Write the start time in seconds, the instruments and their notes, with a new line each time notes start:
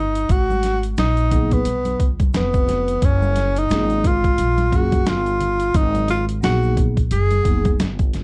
Already playing: upright bass G1, tenor saxophone D#4
0.15 closed hi-hat, shaker
0.29 upright bass G#1, tenor saxophone F#4, kick, closed hi-hat, shaker
0.50 high conga, shaker
0.63 snare, closed hi-hat, shaker
0.83 closed hi-hat, shaker
0.97 upright bass A#1, tenor saxophone D#4, snare, closed hi-hat, shaker
1.17 closed hi-hat, shaker
1.30 vibraphone F#3 A#3 B3 D#4 G#4, kick, closed hi-hat, low conga, shaker
1.51 tenor saxophone B3, kick, closed hi-hat, shaker
1.65 upright bass B1, closed hi-hat, high conga, shaker
1.85 closed hi-hat, high conga, shaker
2.00 upright bass C#2, kick, closed hi-hat, shaker
2.20 kick, closed hi-hat, high conga, shaker
2.34 upright bass F1, tenor saxophone B3, snare, closed hi-hat, low conga, shaker
2.54 kick, closed hi-hat, shaker
2.68 snare, closed hi-hat, low conga, shaker
2.88 closed hi-hat, shaker
3.02 upright bass F#1, tenor saxophone C#4, kick, closed hi-hat, shaker
3.22 high conga, shaker
3.36 snare, closed hi-hat, shaker
3.56 tenor saxophone D#4, closed hi-hat, shaker
3.69 upright bass G#1, vibraphone F#3 A#3 C#4 F4 G#4, snare, closed hi-hat, shaker
3.90 closed hi-hat, shaker
4.04 tenor saxophone F4, kick, closed hi-hat, low conga, shaker
4.24 kick, closed hi-hat, shaker
4.38 upright bass A#1, closed hi-hat, high conga, shaker
4.58 closed hi-hat, high conga, shaker
4.70 upright bass F#1, vibraphone F#3 A#3 C#4 F4, kick, closed hi-hat, shaker
4.74 tenor saxophone F#4, vibraphone G#4
4.92 kick, closed hi-hat, high conga, shaker
5.06 upright bass G1, tenor saxophone F4, snare, closed hi-hat, low conga, shaker
5.26 closed hi-hat, shaker
5.40 closed hi-hat, low conga, shaker
5.60 closed hi-hat, shaker
5.74 upright bass G#1, tenor saxophone D#4, kick, closed hi-hat, shaker
5.95 closed hi-hat, high conga, shaker
6.08 tenor saxophone F4, snare, closed hi-hat, shaker
6.29 closed hi-hat, shaker
6.41 upright bass A#1, vibraphone F#3 A#3 B3 D#4, tenor saxophone F#4, snare, closed hi-hat, shaker
6.45 vibraphone G#4
6.63 shaker
6.77 kick, closed hi-hat, low conga, shaker
6.97 kick, closed hi-hat, shaker
7.11 upright bass F#1, tenor saxophone G#4, closed hi-hat, high conga, shaker
7.31 closed hi-hat, high conga, shaker
7.43 upright bass F1, vibraphone F#3 A#3 B3 D#4, kick, closed hi-hat, shaker
7.47 vibraphone G#4
7.65 kick, closed hi-hat, high conga, shaker
7.80 upright bass G1, snare, closed hi-hat, low conga, shaker
7.99 kick, closed hi-hat, shaker
8.13 snare, closed hi-hat, low conga, shaker